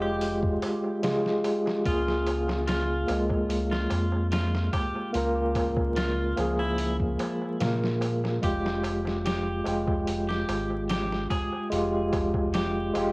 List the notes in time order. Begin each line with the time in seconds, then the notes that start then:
Already playing: F1 G#3 F4 G4
0.01 G4, darbuka tek
0.21 open hi-hat, darbuka tek
0.43 kick
0.62 open hi-hat, darbuka tek
0.84 darbuka tek
1.03 G#3 F4 G#4, snare, open hi-hat, darbuka tek, darbuka dum
1.26 snare
1.44 open hi-hat, darbuka tek
1.66 snare, darbuka tek
1.85 C#2 A#3 F4 G#4, kick, open hi-hat, darbuka tek
2.08 snare
2.27 open hi-hat, darbuka tek
2.48 snare, darbuka tek
2.67 F4, snare, open hi-hat, darbuka tek
3.08 C#2 G#3 A#3 F4, open hi-hat, darbuka tek
3.30 kick, darbuka tek
3.49 open hi-hat, darbuka tek
3.72 F4, snare
3.90 F2, open hi-hat, darbuka tek
4.12 darbuka tek
4.32 F4, snare, open hi-hat, darbuka tek
4.55 snare
4.73 G4, kick, open hi-hat, darbuka tek
4.95 darbuka tek
5.13 C#2 A#3 F4, open hi-hat, darbuka tek
5.17 A#4
5.55 kick, open hi-hat, darbuka tek
5.76 kick, darbuka tek
5.96 F4, snare, open hi-hat, darbuka tek
6.36 C#2 F3 A#3 G#4, open hi-hat, darbuka tek
6.59 E4, darbuka tek
6.78 open hi-hat, darbuka tek
7.00 kick
7.19 open hi-hat, darbuka tek
7.42 darbuka tek
7.60 A#2 A#3 F4 A#4, snare, open hi-hat, darbuka tek, darbuka dum
7.84 snare
8.01 open hi-hat, darbuka tek
8.24 snare, darbuka tek
8.41 F1 G#3 F4 G4, kick, open hi-hat, darbuka tek
8.66 snare
8.83 open hi-hat, darbuka tek
9.05 snare, darbuka tek
9.26 G4, snare, open hi-hat, darbuka tek
9.64 F1 G#3 F4 G5, open hi-hat, darbuka tek
9.88 kick, darbuka tek
10.08 open hi-hat, darbuka tek
10.29 G4, snare
10.49 G#1, open hi-hat, darbuka tek
10.70 darbuka tek
10.90 G4, snare, open hi-hat, darbuka tek
11.13 snare
11.30 G#4, kick, open hi-hat, darbuka tek
11.53 darbuka tek
11.70 F1 G#3 F4 G4, open hi-hat, darbuka tek
12.13 kick, open hi-hat, darbuka tek
12.34 kick, darbuka tek
12.54 G4, snare, open hi-hat, darbuka tek
12.94 F1 G#3 F4 G4, open hi-hat, darbuka tek